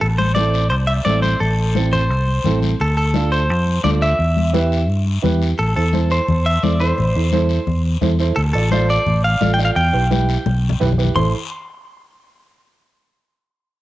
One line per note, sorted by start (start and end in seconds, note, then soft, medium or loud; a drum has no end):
0.01 0.71 A1 medium
0.01 0.06 A4 medium
0.01 high conga soft
0.01 long guiro medium
0.18 0.34 C5 loud
0.18 high conga medium
0.35 0.60 C4 medium
0.35 0.60 E4 medium
0.35 0.61 A4 medium
0.35 0.68 D5 loud
0.35 high conga medium
0.35 short guiro medium
0.54 short guiro medium
0.70 0.99 C2 medium
0.70 0.75 C5 medium
0.70 long guiro medium
0.87 0.92 E5 loud
0.87 high conga soft
1.05 1.34 A1 medium
1.05 1.30 C4 medium
1.05 1.30 E4 medium
1.05 1.30 A4 medium
1.05 1.22 D5 medium
1.05 high conga medium
1.05 short guiro medium
1.22 1.39 C5 medium
1.22 high conga medium
1.22 short guiro medium
1.40 2.10 A1 medium
1.40 1.89 A4 medium
1.40 high conga soft
1.40 long guiro medium
1.75 2.00 C4 medium
1.75 2.00 E4 medium
1.75 2.00 A4 medium
1.75 high conga medium
1.75 short guiro medium
1.93 2.59 C5 medium
1.93 low conga medium
1.93 short guiro medium
2.10 2.38 C2 medium
2.10 long guiro medium
2.28 high conga soft
2.44 2.73 A1 medium
2.44 2.69 C4 medium
2.44 2.70 E4 medium
2.44 2.70 A4 medium
2.44 high conga medium
2.44 low conga medium
2.44 short guiro medium
2.62 high conga medium
2.62 short guiro medium
2.80 3.50 D2 medium
2.80 2.96 A4 medium
2.80 high conga soft
2.80 long guiro medium
2.97 3.30 A4 medium
3.14 3.39 D4 medium
3.14 3.40 F4 medium
3.14 3.40 A4 medium
3.14 high conga medium
3.14 short guiro medium
3.32 3.81 C5 medium
3.32 short guiro medium
3.49 3.78 F2 medium
3.49 long guiro medium
3.66 high conga soft
3.83 4.12 D2 medium
3.83 4.08 D4 medium
3.83 4.09 F4 medium
3.83 4.09 A4 medium
3.83 3.89 D5 medium
3.83 high conga medium
3.83 short guiro medium
4.02 5.20 E5 medium
4.02 short guiro medium
4.19 4.89 E2 medium
4.19 high conga soft
4.19 long guiro medium
4.37 high conga medium
4.53 4.78 E4 medium
4.53 4.78 G4 medium
4.53 4.78 B4 loud
4.53 high conga loud
4.53 short guiro medium
4.72 short guiro medium
4.89 5.17 G2 loud
4.89 long guiro medium
5.06 high conga soft
5.22 5.52 E2 medium
5.22 5.47 E4 medium
5.22 5.48 G4 medium
5.22 5.48 B4 loud
5.22 high conga medium
5.22 low conga medium
5.22 short guiro medium
5.42 short guiro medium
5.59 5.73 A1 medium
5.59 5.75 A4 medium
5.59 high conga soft
5.59 long guiro medium
5.75 6.19 E2 medium
5.75 5.82 E4 medium
5.75 5.82 A4 medium
5.75 6.09 A4 medium
5.75 5.82 C5 medium
5.93 6.18 E4 medium
5.93 6.18 A4 medium
5.93 6.18 C5 medium
5.93 high conga medium
5.93 short guiro medium
6.10 6.47 C5 medium
6.10 short guiro medium
6.28 6.56 E2 medium
6.28 high conga soft
6.28 low conga medium
6.28 long guiro medium
6.46 6.63 E5 loud
6.62 6.91 E2 medium
6.62 6.69 E4 medium
6.62 6.69 A4 medium
6.62 6.69 C5 medium
6.62 6.81 D5 loud
6.62 high conga medium
6.62 short guiro medium
6.80 6.92 E4 medium
6.80 6.92 A4 medium
6.80 7.81 C5 medium
6.80 6.93 C5 medium
6.80 short guiro medium
6.98 7.12 A1 medium
6.98 high conga soft
6.98 low conga medium
6.98 long guiro medium
7.15 7.57 E2 medium
7.15 7.22 E4 medium
7.15 7.22 A4 medium
7.15 7.22 C5 medium
7.32 7.57 E4 medium
7.32 7.57 A4 medium
7.32 7.57 C5 loud
7.32 high conga medium
7.32 short guiro medium
7.49 short guiro medium
7.67 7.95 E2 medium
7.67 high conga soft
7.67 low conga medium
7.67 long guiro medium
8.01 8.30 E2 medium
8.01 8.08 E4 loud
8.01 8.08 A4 medium
8.01 8.08 C5 medium
8.01 high conga medium
8.01 low conga medium
8.01 short guiro medium
8.18 8.31 E4 medium
8.18 8.32 A4 medium
8.18 8.32 C5 medium
8.18 short guiro medium
8.36 8.51 D2 medium
8.36 8.41 A4 medium
8.36 long guiro medium
8.53 8.97 A1 medium
8.53 8.61 F4 medium
8.53 8.70 A4 medium
8.53 8.61 A4 medium
8.53 8.61 D5 medium
8.71 8.97 F4 medium
8.71 8.97 A4 medium
8.71 8.88 C5 loud
8.71 8.97 D5 medium
8.71 high conga medium
8.71 short guiro medium
8.90 9.22 D5 medium
8.90 short guiro medium
9.06 9.35 A1 medium
9.06 high conga soft
9.06 low conga medium
9.06 long guiro medium
9.24 9.51 F5 loud
9.41 9.69 A1 loud
9.41 9.47 F4 medium
9.41 9.48 A4 medium
9.41 9.48 D5 medium
9.41 high conga medium
9.41 short guiro medium
9.54 9.59 G5 loud
9.58 9.71 F4 medium
9.58 9.71 A4 medium
9.58 9.71 D5 medium
9.58 short guiro medium
9.65 9.70 F5 loud
9.76 9.90 E2 loud
9.76 10.77 G5 loud
9.76 high conga soft
9.76 long guiro medium
9.93 10.36 B1 medium
9.93 9.99 E4 medium
9.93 10.00 G4 medium
9.93 10.00 B4 medium
10.10 10.35 E4 medium
10.10 10.35 G4 medium
10.10 10.36 B4 medium
10.10 high conga medium
10.10 short guiro medium
10.29 short guiro medium
10.46 10.74 B1 loud
10.46 high conga loud
10.46 long guiro medium
10.69 low conga medium
10.80 11.09 B1 medium
10.80 10.87 E4 medium
10.80 10.87 G4 medium
10.80 10.87 B4 loud
10.80 low conga medium
10.80 short guiro medium
10.92 low conga medium
10.98 11.10 E4 medium
10.98 11.10 G4 medium
10.98 11.11 B4 medium
10.98 short guiro medium
11.05 low conga medium
11.15 11.32 A1 medium
11.15 11.32 E4 medium
11.15 11.32 A4 medium
11.15 11.32 C5 loud
11.15 11.32 C6 medium
11.15 low conga loud
11.15 long guiro loud